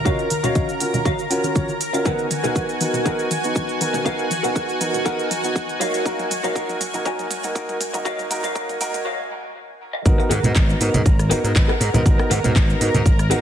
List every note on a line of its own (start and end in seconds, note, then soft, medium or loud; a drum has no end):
0.00 2.07 A#4 medium
0.00 2.07 A#5 medium
0.05 0.25 C#4 medium
0.05 0.25 F4 medium
0.05 0.19 F#4 loud
0.05 0.25 F#4 medium
0.05 0.26 A#4 loud
0.05 0.19 C#5 loud
0.05 0.19 D#5 loud
0.05 0.19 F5 loud
0.05 kick loud
0.05 closed hi-hat soft
0.05 mid tom medium
0.05 cabasa medium
0.05 shaker soft
0.19 closed hi-hat soft
0.19 cabasa soft
0.30 muted clean electric guitar stroke soft
0.30 open hi-hat loud
0.30 high conga medium
0.30 shaker medium
0.43 0.78 C#4 medium
0.43 0.69 F#4 medium
0.43 0.78 F#4 medium
0.43 0.69 C#5 medium
0.43 0.78 C#5 medium
0.43 0.69 D#5 medium
0.43 0.78 F5 medium
0.43 0.70 F5 medium
0.43 closed hi-hat soft
0.43 low conga medium
0.43 cabasa medium
0.43 shaker soft
0.55 kick loud
0.55 closed hi-hat soft
0.55 mid tom medium
0.55 cabasa medium
0.55 shaker soft
0.69 closed hi-hat soft
0.69 cabasa soft
0.69 shaker soft
0.80 1.00 C#4 medium
0.80 1.00 F4 medium
0.80 1.00 F#4 medium
0.80 1.01 A#4 medium
0.80 open hi-hat loud
0.80 shaker medium
0.94 muted clean electric guitar stroke soft
0.94 closed hi-hat soft
0.94 high conga medium
0.94 low conga medium
0.94 cabasa medium
0.94 shaker soft
1.05 1.19 F#4 medium
1.05 1.19 C#5 medium
1.05 1.19 D#5 medium
1.05 1.20 F5 medium
1.05 kick loud
1.05 closed hi-hat soft
1.05 mid tom medium
1.05 cabasa medium
1.05 shaker soft
1.18 closed hi-hat soft
1.18 cabasa soft
1.18 shaker soft
1.30 1.41 C#4 medium
1.30 1.41 F4 medium
1.30 1.41 F#4 medium
1.30 1.41 A#4 loud
1.30 muted clean electric guitar stroke soft
1.30 open hi-hat loud
1.30 shaker medium
1.43 1.53 C#4 medium
1.43 1.54 F4 medium
1.43 1.54 F#4 medium
1.43 1.54 A#4 medium
1.43 closed hi-hat soft
1.43 high conga medium
1.43 cabasa medium
1.43 shaker soft
1.55 1.68 C#4 medium
1.55 1.68 F4 medium
1.55 1.69 F#4 medium
1.55 1.69 C#5 medium
1.55 kick loud
1.55 closed hi-hat soft
1.55 mid tom medium
1.55 cabasa medium
1.55 shaker soft
1.68 closed hi-hat soft
1.68 high conga medium
1.68 cabasa soft
1.68 shaker soft
1.81 open hi-hat loud
1.81 shaker medium
1.93 2.03 C#4 medium
1.93 2.03 F4 medium
1.93 2.03 F#4 medium
1.93 2.03 A#4 medium
1.93 muted clean electric guitar stroke medium
1.93 closed hi-hat soft
1.93 cabasa medium
1.93 shaker soft
2.05 2.25 B3 medium
2.05 2.25 D#4 medium
2.05 9.06 F#4 medium
2.05 2.19 G#4 loud
2.05 2.19 A#4 loud
2.05 2.26 A#4 medium
2.05 2.19 B4 loud
2.05 2.20 F#5 loud
2.05 9.06 G#5 medium
2.05 kick loud
2.05 closed hi-hat soft
2.05 mid tom medium
2.05 cabasa medium
2.05 shaker soft
2.18 closed hi-hat soft
2.18 cabasa soft
2.30 muted clean electric guitar stroke soft
2.30 open hi-hat loud
2.30 mid tom medium
2.30 high conga medium
2.30 shaker medium
2.43 2.78 B3 medium
2.43 2.78 D#4 medium
2.43 2.78 F#4 medium
2.43 2.69 G#4 medium
2.43 2.69 A#4 medium
2.43 2.69 B4 medium
2.43 2.70 F#5 medium
2.43 closed hi-hat medium
2.43 low conga medium
2.43 cabasa medium
2.43 shaker soft
2.55 kick loud
2.55 closed hi-hat soft
2.55 mid tom medium
2.55 cabasa medium
2.55 shaker soft
2.69 closed hi-hat soft
2.69 cabasa soft
2.69 shaker soft
2.80 3.00 B3 medium
2.80 3.00 D#4 medium
2.80 3.01 F#4 medium
2.80 3.01 A#4 medium
2.80 open hi-hat loud
2.80 mid tom medium
2.80 shaker medium
2.93 muted clean electric guitar stroke soft
2.93 closed hi-hat soft
2.93 high conga medium
2.93 low conga medium
2.93 cabasa medium
2.93 shaker soft
3.05 3.25 B3 medium
3.05 3.25 D#4 medium
3.05 3.26 F#4 medium
3.05 3.19 G#4 medium
3.05 3.19 A#4 medium
3.05 3.26 A#4 loud
3.05 3.19 B4 medium
3.05 3.20 F#5 medium
3.05 kick loud
3.05 closed hi-hat soft
3.05 mid tom medium
3.05 cabasa medium
3.05 shaker soft
3.19 closed hi-hat soft
3.19 cabasa soft
3.19 shaker soft
3.30 muted clean electric guitar stroke soft
3.30 open hi-hat loud
3.30 mid tom medium
3.30 shaker medium
3.43 3.78 B3 medium
3.43 3.78 D#4 medium
3.43 3.78 F#4 medium
3.43 closed hi-hat soft
3.43 cabasa medium
3.43 shaker soft
3.55 kick loud
3.55 closed hi-hat soft
3.55 mid tom medium
3.55 cabasa medium
3.55 shaker soft
3.69 closed hi-hat soft
3.69 cabasa soft
3.81 4.00 B3 medium
3.81 4.00 D#4 medium
3.81 4.01 F#4 medium
3.81 4.01 A#4 medium
3.81 open hi-hat loud
3.81 mid tom medium
3.81 shaker medium
3.93 muted clean electric guitar stroke medium
3.93 closed hi-hat soft
3.93 high conga medium
3.93 low conga medium
3.93 cabasa medium
3.93 shaker soft
4.04 4.25 B3 medium
4.04 4.25 D#4 medium
4.04 4.25 F#4 medium
4.04 4.19 G#4 loud
4.04 4.19 A#4 loud
4.04 4.26 A#4 medium
4.04 4.19 B4 loud
4.04 4.19 F5 loud
4.04 kick loud
4.04 closed hi-hat soft
4.04 mid tom medium
4.04 cabasa medium
4.04 shaker soft
4.19 closed hi-hat soft
4.19 cabasa soft
4.30 muted clean electric guitar stroke soft
4.30 open hi-hat loud
4.30 mid tom medium
4.30 high conga medium
4.30 shaker medium
4.43 4.78 B3 medium
4.43 4.78 D#4 medium
4.43 4.78 F#4 medium
4.43 4.69 G#4 medium
4.43 4.69 A#4 medium
4.43 4.69 B4 medium
4.43 4.69 F#5 loud
4.43 closed hi-hat medium
4.43 low conga medium
4.43 cabasa medium
4.43 shaker soft
4.55 kick loud
4.55 closed hi-hat soft
4.55 mid tom medium
4.55 cabasa medium
4.55 shaker soft
4.68 closed hi-hat soft
4.68 cabasa soft
4.68 shaker soft
4.80 5.00 B3 medium
4.80 5.00 D#4 medium
4.80 5.00 F#4 medium
4.80 5.01 A#4 medium
4.80 open hi-hat loud
4.80 mid tom medium
4.80 shaker medium
4.93 muted clean electric guitar stroke soft
4.93 closed hi-hat soft
4.93 high conga medium
4.93 low conga medium
4.93 cabasa medium
4.93 shaker soft
5.05 5.25 B3 medium
5.05 5.25 D#4 medium
5.05 5.25 F#4 medium
5.05 5.19 G#4 medium
5.05 5.19 A#4 medium
5.05 5.26 A#4 loud
5.05 5.19 B4 medium
5.05 5.19 F#5 medium
5.05 kick loud
5.05 closed hi-hat medium
5.05 mid tom medium
5.05 cabasa medium
5.05 shaker soft
5.19 closed hi-hat soft
5.19 cabasa soft
5.19 shaker soft
5.30 muted clean electric guitar stroke soft
5.30 open hi-hat loud
5.30 mid tom medium
5.30 shaker medium
5.43 5.78 B3 medium
5.43 5.78 D#4 medium
5.43 5.78 F#4 medium
5.43 closed hi-hat medium
5.43 high conga medium
5.43 cabasa medium
5.43 shaker soft
5.56 kick loud
5.56 closed hi-hat medium
5.56 mid tom medium
5.56 cabasa medium
5.56 shaker soft
5.69 closed hi-hat soft
5.69 high conga medium
5.69 cabasa soft
5.80 6.00 A#3 medium
5.80 6.00 D#4 medium
5.80 6.21 F#4 medium
5.80 6.00 F#4 medium
5.80 6.01 A#4 medium
5.80 6.21 C#5 medium
5.80 6.22 D#5 medium
5.80 6.22 F5 loud
5.80 open hi-hat loud
5.80 mid tom medium
5.80 shaker medium
5.94 closed hi-hat medium
5.94 cabasa medium
5.94 shaker soft
6.05 6.25 A#3 medium
6.05 6.25 D#4 medium
6.05 6.26 F#4 medium
6.05 6.26 A#4 loud
6.05 kick loud
6.05 closed hi-hat medium
6.05 mid tom medium
6.05 cabasa medium
6.05 shaker soft
6.19 closed hi-hat soft
6.19 mid tom medium
6.19 cabasa soft
6.30 muted clean electric guitar stroke soft
6.30 open hi-hat loud
6.30 mid tom medium
6.30 high conga medium
6.30 shaker medium
6.43 6.54 A#3 medium
6.43 6.54 D#4 medium
6.43 6.69 F#4 medium
6.43 6.54 F#4 medium
6.43 6.54 A#4 medium
6.43 6.69 C#5 medium
6.43 6.69 D#5 medium
6.43 6.69 F5 loud
6.43 closed hi-hat medium
6.43 mid tom medium
6.43 low conga medium
6.43 cabasa medium
6.43 shaker soft
6.55 6.75 A#3 medium
6.55 6.75 D#4 medium
6.55 6.76 F#4 medium
6.55 6.76 A#4 loud
6.55 kick loud
6.55 closed hi-hat medium
6.55 mid tom medium
6.55 cabasa medium
6.55 shaker soft
6.69 closed hi-hat soft
6.69 mid tom medium
6.69 cabasa soft
6.69 shaker soft
6.81 open hi-hat loud
6.81 mid tom medium
6.81 shaker medium
6.94 7.04 A#3 medium
6.94 7.04 D#4 medium
6.94 7.04 F#4 medium
6.94 7.04 A#4 medium
6.94 muted clean electric guitar stroke soft
6.94 closed hi-hat medium
6.94 mid tom medium
6.94 high conga medium
6.94 low conga medium
6.94 cabasa medium
6.94 shaker soft
7.05 7.25 A#3 loud
7.05 7.25 D#4 medium
7.05 7.19 F#4 medium
7.05 7.26 F#4 medium
7.05 7.26 A#4 loud
7.05 7.19 C#5 medium
7.05 7.19 D#5 medium
7.05 7.20 G#5 medium
7.05 kick loud
7.05 closed hi-hat medium
7.05 mid tom medium
7.05 cabasa medium
7.05 shaker soft
7.19 closed hi-hat soft
7.19 mid tom medium
7.19 cabasa soft
7.19 shaker soft
7.30 muted clean electric guitar stroke soft
7.30 open hi-hat loud
7.30 mid tom loud
7.30 shaker medium
7.43 7.54 A#3 medium
7.43 7.54 D#4 medium
7.43 7.54 F#4 medium
7.43 7.54 A#4 medium
7.43 closed hi-hat medium
7.43 mid tom medium
7.43 cabasa medium
7.43 shaker soft
7.55 7.75 A#3 medium
7.55 7.75 D#4 medium
7.55 7.76 F#4 medium
7.55 7.76 A#4 loud
7.55 kick loud
7.55 closed hi-hat medium
7.55 mid tom loud
7.55 cabasa medium
7.55 shaker soft
7.69 closed hi-hat soft
7.69 mid tom medium
7.69 cabasa soft
7.81 open hi-hat loud
7.81 mid tom loud
7.81 shaker medium
7.93 8.04 A#3 medium
7.93 8.04 D#4 medium
7.93 8.04 F#4 medium
7.93 8.04 A#4 medium
7.93 muted clean electric guitar stroke medium
7.93 closed hi-hat medium
7.93 mid tom medium
7.93 high conga medium
7.93 low conga medium
7.93 cabasa medium
7.93 shaker soft
8.05 8.25 A#3 loud
8.05 8.25 D#4 medium
8.05 8.19 F#4 loud
8.05 8.26 F#4 medium
8.05 8.26 A#4 loud
8.05 8.19 C#5 loud
8.05 8.19 D#5 loud
8.05 8.19 F5 loud
8.05 kick loud
8.05 closed hi-hat medium
8.05 mid tom loud
8.05 cabasa medium
8.05 shaker soft
8.19 closed hi-hat soft
8.19 mid tom medium
8.19 cabasa soft
8.19 shaker soft
8.30 8.50 A#3 loud
8.30 8.50 D#4 loud
8.30 8.51 F#4 medium
8.30 8.51 A#4 loud
8.30 muted clean electric guitar stroke soft
8.30 open hi-hat loud
8.30 mid tom loud
8.30 high conga medium
8.30 shaker medium
8.43 8.69 F#4 medium
8.43 8.69 C#5 medium
8.43 8.69 D#5 medium
8.43 8.69 F5 medium
8.43 closed hi-hat medium
8.43 mid tom medium
8.43 low conga loud
8.43 cabasa medium
8.43 shaker soft
8.55 8.75 A#3 medium
8.55 8.75 D#4 medium
8.55 8.75 F#4 medium
8.55 8.76 A#4 loud
8.55 kick loud
8.55 closed hi-hat medium
8.55 mid tom loud
8.55 cabasa medium
8.55 shaker soft
8.69 closed hi-hat soft
8.69 mid tom medium
8.69 cabasa soft
8.69 shaker soft
8.80 9.00 A#3 loud
8.80 9.00 D#4 medium
8.80 9.00 F#4 medium
8.80 9.01 A#4 loud
8.80 open hi-hat loud
8.80 mid tom loud
8.80 shaker medium
8.93 muted clean electric guitar stroke soft
8.93 closed hi-hat medium
8.93 mid tom medium
8.93 high conga medium
8.93 low conga medium
8.93 cabasa medium
8.93 shaker soft
9.05 9.19 F#4 medium
9.05 9.19 C#5 medium
9.05 9.19 D#5 medium
9.05 9.19 F5 loud
9.30 muted clean electric guitar stroke soft
9.93 muted clean electric guitar stroke medium
10.05 10.15 G#1 loud
10.05 10.25 B3 medium
10.05 10.25 D#4 medium
10.05 10.25 F#4 medium
10.05 13.41 A#4 medium
10.05 10.26 A#4 loud
10.05 13.41 A#5 medium
10.05 kick loud
10.05 closed hi-hat medium
10.05 cabasa medium
10.05 shaker soft
10.18 muted clean electric guitar stroke medium
10.18 cabasa soft
10.30 10.40 G#2 medium
10.30 10.44 G#4 loud
10.30 10.44 A#4 loud
10.30 10.44 B4 loud
10.30 10.44 F#5 loud
10.30 open hi-hat loud
10.30 high conga medium
10.30 shaker medium
10.43 10.52 G#2 medium
10.43 10.78 B3 medium
10.43 10.78 D#4 medium
10.43 10.78 F#4 medium
10.43 closed hi-hat medium
10.43 low conga medium
10.43 cabasa medium
10.43 shaker soft
10.55 10.73 G#1 medium
10.55 kick loud
10.55 clap loud
10.55 closed hi-hat medium
10.55 cabasa medium
10.55 shaker soft
10.70 cabasa soft
10.70 shaker soft
10.80 10.90 G#2 loud
10.80 11.00 B3 medium
10.80 11.00 D#4 medium
10.80 11.01 F#4 medium
10.80 11.01 A#4 medium
10.80 open hi-hat loud
10.80 shaker medium
10.93 11.02 G#2 loud
10.93 muted clean electric guitar stroke soft
10.93 closed hi-hat medium
10.93 high conga medium
10.93 low conga medium
10.93 cabasa medium
10.93 shaker soft
11.05 11.32 G#1 medium
11.05 muted clean electric guitar stroke soft
11.05 kick loud
11.05 closed hi-hat medium
11.05 cabasa medium
11.05 shaker soft
11.19 cross-stick medium
11.19 closed hi-hat soft
11.19 cabasa soft
11.19 shaker soft
11.30 11.40 G#2 medium
11.30 11.41 B3 loud
11.30 11.41 D#4 medium
11.30 11.41 F#4 medium
11.30 11.49 G#4 loud
11.30 11.50 A#4 loud
11.30 11.41 A#4 loud
11.30 11.50 B4 loud
11.30 11.50 F#5 loud
11.30 open hi-hat loud
11.30 shaker medium
11.44 11.52 G#2 medium
11.44 11.54 B3 medium
11.44 11.54 D#4 medium
11.44 11.54 F#4 medium
11.44 11.55 A#4 medium
11.44 closed hi-hat medium
11.44 cabasa medium
11.44 shaker soft
11.56 11.65 G#1 medium
11.56 11.69 B3 medium
11.56 11.69 D#4 medium
11.56 11.69 F#4 medium
11.56 11.69 B4 medium
11.56 kick loud
11.56 clap loud
11.56 closed hi-hat medium
11.56 cabasa medium
11.56 shaker soft
11.68 11.94 G#4 medium
11.68 11.94 A#4 medium
11.68 11.94 B4 medium
11.68 11.94 F#5 loud
11.68 cross-stick medium
11.68 cabasa soft
11.80 11.89 G#2 loud
11.80 open hi-hat loud
11.80 shaker medium
11.94 12.02 G#2 loud
11.94 12.03 B3 medium
11.94 12.03 D#4 medium
11.94 12.03 F#4 medium
11.94 12.03 A#4 medium
11.94 closed hi-hat medium
11.94 high conga medium
11.94 low conga loud
11.94 cabasa medium
11.94 shaker soft
12.06 12.15 G#1 loud
12.06 12.25 B3 medium
12.06 12.25 D#4 medium
12.06 12.26 F#4 medium
12.06 12.26 A#4 loud
12.06 kick loud
12.06 closed hi-hat medium
12.06 cabasa medium
12.06 shaker soft
12.18 muted clean electric guitar stroke medium
12.18 cross-stick medium
12.18 cabasa soft
12.30 12.40 G#2 loud
12.30 12.44 G#4 loud
12.30 12.44 A#4 loud
12.30 12.44 B4 loud
12.30 12.44 F#5 loud
12.30 open hi-hat loud
12.30 high conga medium
12.30 shaker medium
12.43 12.52 G#2 medium
12.43 12.78 B3 medium
12.43 12.78 D#4 medium
12.43 12.78 F#4 medium
12.43 closed hi-hat medium
12.43 low conga loud
12.43 cabasa medium
12.43 shaker soft
12.56 12.73 G#1 loud
12.56 kick loud
12.56 clap loud
12.56 closed hi-hat medium
12.56 cabasa medium
12.56 shaker soft
12.70 cabasa soft
12.70 shaker soft
12.80 12.90 G#2 medium
12.80 13.00 B3 medium
12.80 13.00 D#4 medium
12.80 13.00 F#4 medium
12.80 13.01 A#4 medium
12.80 open hi-hat loud
12.80 shaker medium
12.94 13.02 G#2 medium
12.94 muted clean electric guitar stroke soft
12.94 closed hi-hat medium
12.94 high conga medium
12.94 low conga medium
12.94 cabasa medium
12.94 shaker soft
13.05 13.32 G#1 medium
13.05 muted clean electric guitar stroke soft
13.05 kick loud
13.05 closed hi-hat medium
13.05 cabasa medium
13.05 shaker soft
13.19 cross-stick medium
13.19 closed hi-hat soft
13.19 cabasa soft
13.19 shaker soft
13.30 13.40 G#2 medium
13.30 13.41 B3 medium
13.30 13.41 D#4 medium
13.30 13.41 F#4 medium
13.30 13.41 G#4 loud
13.30 13.41 A#4 loud
13.30 13.41 B4 loud
13.30 13.41 F#5 loud
13.30 open hi-hat loud
13.30 shaker medium